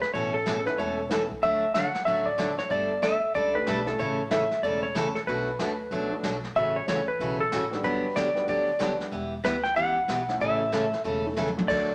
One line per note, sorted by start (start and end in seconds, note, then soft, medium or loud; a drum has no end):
0.02 0.13 B4 medium
0.02 snare soft
0.14 0.65 A1 medium
0.14 0.35 B2 medium
0.14 0.35 E3 medium
0.14 0.35 A3 medium
0.14 0.35 C#4 medium
0.14 0.35 A4 medium
0.14 0.34 C#5 medium
0.14 brush sweep soft
0.34 0.58 A4 medium
0.46 0.57 B2 medium
0.46 0.57 E3 medium
0.46 0.57 A3 medium
0.46 0.58 C#4 medium
0.46 0.58 A4 medium
0.46 snare medium
0.46 hi-hat pedal medium
0.60 0.65 A4 medium
0.65 0.77 B3 medium
0.65 0.77 C#4 medium
0.65 0.77 E4 medium
0.65 0.77 A4 medium
0.65 0.79 B4 medium
0.65 snare soft
0.78 1.29 E1 medium
0.78 0.99 B2 medium
0.78 0.99 E3 medium
0.78 0.99 A3 medium
0.78 0.99 C#4 medium
0.78 0.99 A4 medium
0.78 1.08 C#5 medium
0.78 brush sweep soft
1.09 1.22 B2 medium
1.09 1.22 E3 medium
1.09 1.22 A3 medium
1.09 1.28 B3 medium
1.09 1.28 C#4 medium
1.09 1.22 C#4 medium
1.09 1.28 E4 medium
1.09 1.28 F#4 medium
1.09 1.22 A4 medium
1.09 snare medium
1.09 hi-hat pedal medium
1.30 kick medium
1.42 1.94 D2 medium
1.42 1.63 D3 medium
1.42 1.63 F#3 soft
1.42 1.63 A3 medium
1.42 1.63 D4 medium
1.42 1.64 F#4 medium
1.42 1.74 E5 loud
1.42 brush sweep soft
1.74 1.86 D3 medium
1.74 1.86 F#3 medium
1.74 1.86 A3 medium
1.74 1.86 D4 medium
1.74 1.86 F#4 medium
1.74 2.05 F#5 loud
1.74 snare medium
1.74 hi-hat pedal medium
1.94 snare soft
2.05 2.58 A1 medium
2.05 2.27 D3 medium
2.05 2.27 F#3 medium
2.05 2.27 A3 medium
2.05 2.28 D4 medium
2.05 2.28 F#4 medium
2.05 2.26 E5 loud
2.05 brush sweep soft
2.26 2.58 D5 medium
2.38 2.49 D3 medium
2.38 2.49 F#3 medium
2.38 2.56 A3 medium
2.38 2.50 A3 medium
2.38 2.56 D4 medium
2.38 2.50 D4 medium
2.38 2.56 F#4 medium
2.38 2.50 F#4 medium
2.38 2.57 A4 medium
2.38 snare medium
2.38 hi-hat pedal soft
2.58 2.71 C#5 medium
2.58 snare soft
2.70 3.22 G1 medium
2.70 2.91 G3 medium
2.70 2.91 A3 medium
2.70 2.91 D4 medium
2.70 2.92 A4 medium
2.70 3.04 D5 medium
2.70 brush sweep soft
3.02 3.14 G3 medium
3.02 3.14 A3 medium
3.02 3.14 D4 medium
3.02 3.14 A4 medium
3.02 3.33 E5 loud
3.02 snare medium
3.02 hi-hat pedal medium
3.34 3.62 C#2 medium
3.34 3.55 G3 medium
3.34 3.56 A3 medium
3.34 3.56 D4 medium
3.34 3.56 A4 medium
3.34 3.55 D5 loud
3.34 brush sweep soft
3.53 3.84 A3 medium
3.53 3.84 D4 medium
3.53 3.85 G4 medium
3.53 3.85 A4 medium
3.53 3.88 B4 medium
3.67 3.94 B1 medium
3.67 3.78 G3 medium
3.67 3.78 A3 medium
3.67 3.78 D4 medium
3.67 3.79 A4 medium
3.67 snare medium
3.67 hi-hat pedal soft
3.85 3.97 A3 medium
3.85 3.97 C#4 medium
3.85 3.97 E4 medium
3.85 3.98 A4 medium
3.85 snare soft
3.98 4.50 A1 medium
3.98 4.19 C#3 medium
3.98 4.20 E3 medium
3.98 4.20 A3 medium
3.98 4.20 C#4 medium
3.98 4.20 A4 medium
3.98 4.32 C#5 medium
3.98 brush sweep medium
4.29 4.42 C#3 medium
4.29 4.42 E3 medium
4.29 4.48 A3 medium
4.29 4.43 A3 medium
4.29 4.48 C#4 medium
4.29 4.43 C#4 medium
4.29 4.49 E4 medium
4.29 4.49 A4 medium
4.29 4.43 A4 medium
4.29 4.61 E5 medium
4.29 snare medium
4.29 hi-hat pedal soft
4.51 snare soft
4.63 5.14 E1 medium
4.63 4.84 C#3 medium
4.63 4.84 E3 medium
4.63 4.84 A3 medium
4.63 4.84 C#4 medium
4.63 4.84 A4 medium
4.63 4.82 D5 medium
4.63 brush sweep soft
4.83 5.16 C#5 medium
4.95 5.06 C#3 medium
4.95 5.06 E3 medium
4.95 5.06 A3 medium
4.95 5.07 C#4 medium
4.95 5.07 A4 medium
4.95 snare medium
4.95 hi-hat pedal medium
5.15 5.20 A4 medium
5.15 snare soft
5.27 5.53 B1 medium
5.27 5.48 B2 medium
5.27 5.49 F#3 medium
5.27 5.49 A3 medium
5.27 5.49 D4 medium
5.27 5.49 F#4 medium
5.27 6.23 B4 medium
5.27 brush sweep medium
5.59 5.86 D2 medium
5.59 5.71 B2 medium
5.59 5.71 F#3 medium
5.59 5.71 A3 medium
5.59 5.71 D4 medium
5.59 5.71 F#4 medium
5.59 snare medium
5.59 hi-hat pedal medium
5.91 6.18 C#2 medium
5.91 6.12 B2 medium
5.91 6.12 F#3 medium
5.91 6.12 A3 medium
5.91 6.13 D4 medium
5.91 6.13 F#4 medium
5.91 brush sweep medium
6.10 6.21 A3 medium
6.10 6.22 B3 medium
6.10 6.22 D4 medium
6.10 6.22 F#4 medium
6.23 6.51 B1 medium
6.23 6.35 B2 medium
6.23 6.35 F#3 medium
6.23 6.35 A3 medium
6.23 6.35 D4 medium
6.23 6.35 F#4 medium
6.23 snare medium
6.23 hi-hat pedal medium
6.44 snare soft
6.56 6.81 A1 medium
6.56 6.76 C#3 medium
6.56 6.77 E3 medium
6.56 6.77 A3 soft
6.56 6.77 C#4 medium
6.56 6.77 F#4 medium
6.56 6.76 E5 loud
6.56 brush sweep medium
6.76 6.87 C#5 medium
6.88 7.15 C#2 medium
6.88 6.99 C#3 medium
6.88 6.99 E3 medium
6.88 6.99 A3 medium
6.88 7.00 C#4 medium
6.88 7.00 F#4 medium
6.88 7.07 C#5 medium
6.88 snare medium
6.88 hi-hat pedal medium
7.08 7.40 B4 medium
7.19 7.47 B1 medium
7.19 7.41 C#3 medium
7.19 7.41 E3 medium
7.19 7.41 A3 medium
7.19 7.41 C#4 medium
7.19 7.41 F#4 medium
7.19 brush sweep soft
7.40 7.84 A4 medium
7.51 7.79 A1 medium
7.51 7.63 C#3 medium
7.51 7.63 E3 medium
7.51 7.63 A3 medium
7.51 7.64 C#4 medium
7.51 7.64 F#4 medium
7.51 snare medium
7.51 hi-hat pedal medium
7.71 8.13 G3 medium
7.71 8.14 B3 medium
7.71 8.14 D4 medium
7.71 8.14 F#4 medium
7.71 snare soft
7.83 8.35 G1 medium
7.83 8.04 D3 soft
7.83 8.05 F#3 medium
7.83 8.05 B3 medium
7.83 8.05 D4 medium
7.83 8.05 G4 medium
7.83 8.17 B4 medium
7.83 brush sweep medium
8.16 8.27 D3 medium
8.16 8.27 F#3 medium
8.16 8.27 B3 medium
8.16 8.28 D4 medium
8.16 8.28 G4 medium
8.16 8.48 D5 medium
8.16 snare medium
8.16 hi-hat pedal medium
8.35 8.46 G3 medium
8.35 8.47 B3 medium
8.35 8.47 D4 medium
8.35 8.47 F#4 medium
8.35 snare soft
8.48 8.99 D2 medium
8.48 8.69 D3 medium
8.48 8.69 F#3 medium
8.48 8.69 B3 medium
8.48 8.69 D4 medium
8.48 8.69 G4 medium
8.48 8.97 D5 medium
8.48 brush sweep soft
8.79 8.91 D3 medium
8.79 8.91 F#3 medium
8.79 9.12 G3 medium
8.79 8.91 B3 medium
8.79 9.12 B3 medium
8.79 8.91 D4 medium
8.79 9.12 D4 medium
8.79 9.13 F#4 medium
8.79 8.92 G4 medium
8.79 snare medium
8.79 hi-hat pedal medium
9.00 snare soft
9.12 9.38 E1 medium
9.12 9.33 E3 medium
9.12 9.33 B3 medium
9.12 9.33 E4 medium
9.12 9.33 G4 medium
9.12 brush sweep soft
9.44 9.71 D2 medium
9.44 9.55 E3 medium
9.44 9.56 B3 medium
9.44 9.56 E4 medium
9.44 9.56 G4 medium
9.44 9.65 B4 medium
9.44 snare medium
9.44 hi-hat pedal medium
9.64 9.76 G5 loud
9.64 snare soft
9.76 10.03 C#2 medium
9.76 9.97 E3 medium
9.76 9.97 B3 medium
9.76 9.97 E4 medium
9.76 9.98 G4 medium
9.76 10.37 F#5 loud
9.76 brush sweep medium
10.08 10.35 B1 medium
10.08 10.19 E3 medium
10.08 10.20 B3 medium
10.08 10.20 E4 medium
10.08 10.20 G4 medium
10.08 snare medium
10.08 hi-hat pedal medium
10.29 10.70 A3 medium
10.29 10.71 C#4 medium
10.29 10.71 E4 medium
10.29 10.71 A4 medium
10.29 snare soft
10.40 10.92 A1 medium
10.40 10.61 C#3 medium
10.40 10.62 E3 medium
10.40 10.62 A3 medium
10.40 10.62 C#4 medium
10.40 10.62 A4 medium
10.40 11.01 E5 medium
10.40 brush sweep soft
10.72 10.84 C#3 medium
10.72 10.84 E3 medium
10.72 10.84 A3 medium
10.72 10.84 C#4 medium
10.72 10.84 A4 medium
10.72 snare medium
10.72 hi-hat pedal medium
10.93 snare soft
11.04 11.56 E1 medium
11.04 11.25 C#3 medium
11.04 11.25 E3 medium
11.04 11.25 A3 medium
11.04 11.26 C#4 medium
11.04 11.26 A4 medium
11.04 brush sweep medium
11.25 11.36 A3 medium
11.25 11.36 C#4 medium
11.25 11.36 E4 medium
11.25 11.37 A4 medium
11.37 11.48 C#3 medium
11.37 11.48 E3 medium
11.37 11.48 A3 medium
11.37 11.48 C#4 medium
11.37 11.49 A4 medium
11.37 hi-hat pedal medium
11.37 high tom soft
11.48 high tom medium
11.56 11.67 A3 medium
11.56 11.68 D4 medium
11.56 11.68 F#4 medium
11.56 11.68 A4 medium
11.56 high tom medium
11.68 11.95 D2 medium
11.68 11.89 D3 medium
11.68 11.90 F#3 medium
11.68 11.90 A3 medium
11.68 11.90 D4 medium
11.68 11.90 F#4 medium
11.68 11.95 D5 loud
11.68 brush sweep medium
11.68 kick medium
11.68 crash medium